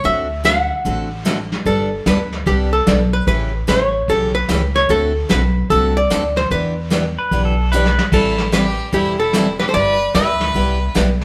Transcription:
0.04 D2 D3 A3 C4 F#4 A4 E5, brush sweep, kick
0.44 D3 A3 C4 F#4 A4 F#5, snare, hi-hat pedal
0.85 A1 D3 A3 C4 F#4 A4, brush sweep, kick
1.25 D3 A3 C4 F#4 A4, snare, hi-hat pedal
1.52 snare
1.66 G1 G3 B3 D4 A4, brush sweep, kick
2.06 D2 G3 B3 D4 A4 B4, snare, hi-hat pedal
2.32 snare
2.46 C2 G3 B3 D4 G4 A4, brush sweep, kick
2.73 A4
2.87 B1 G3 B3 D4 A4, snare, hi-hat pedal
3.13 B4
3.27 A1 C#3 E3 A3 C#4 G4 B4, brush sweep, kick
3.67 A1 C#3 E3 A3 C#4 G4 C#5, snare, hi-hat pedal
4.08 B1 C#3 E3 A3 C#4 G4 A4, brush sweep, kick
4.35 B4
4.48 C#2 C#3 E3 A3 C#4 G4, snare, hi-hat pedal
4.75 C#5, snare
4.89 D2 D3 A3 C4 F#4 A4, brush sweep, kick
5.29 B1 D3 A3 C4 F#4 A4 B4, snare, hi-hat pedal
5.70 C2 D3 A3 C4 F#4 A4, brush sweep, kick
5.97 D5
6.10 D2 D3 A3 C4 F#4 A4, snare, hi-hat pedal
6.36 C5, snare
6.50 E2 E3 B3 D4 G4 B4, brush sweep, kick
6.90 E3 B3 D4 G4, snare, hi-hat pedal
7.19 B4
7.31 B1 E3 B3 D4 G4, brush sweep, kick
7.45 A4
7.72 E3 B3 D4 G4 B4, hi-hat pedal
7.86 snare
7.99 snare
8.12 A1 E3 G3 C4 E4 A4, brush sweep, kick, crash
8.38 snare
8.52 E3 G3 C4 E4 G4 A4 B4, snare, hi-hat pedal
8.93 E1 E3 G3 C4 E4 G4 A4, brush sweep, kick
9.20 E4 A4
9.33 E3 G3 C4 E4 A4, snare, hi-hat pedal
9.59 G4 B4, snare
9.69 A4 C5
9.73 G1 G3 B3 E4 G4 B4 D5, brush sweep, kick
10.14 D2 G3 B3 E4 G4 B4 E5, snare, hi-hat pedal
10.41 snare
10.54 C2 G3 B3 E4 G4, brush sweep, kick
10.95 B1 G3 B3 E4 G4, snare, hi-hat pedal
11.21 snare

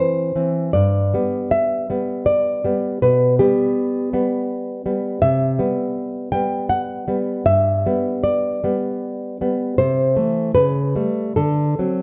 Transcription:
Already playing: E3 C4 C5
0.36 E3 C4
0.73 G2 D5
1.14 G3 B3
1.51 E5
1.90 G3 B3
2.26 D5
2.64 G3 B3
3.02 B2 B4
3.39 G3 B3 G4
4.13 G3 B3
4.86 G3 B3
5.22 C3 E5
5.59 G3 B3
6.32 G3 B3 G5
6.69 F#5
7.08 G3 B3
7.46 G2 E5
7.86 G3 B3
8.24 D5
8.64 G3 B3
9.41 G3 B3
9.78 C3 C5
10.16 E3 A3
10.55 C#3 B4
10.96 G3 A3
11.36 D3 A4
11.79 F#3 C4

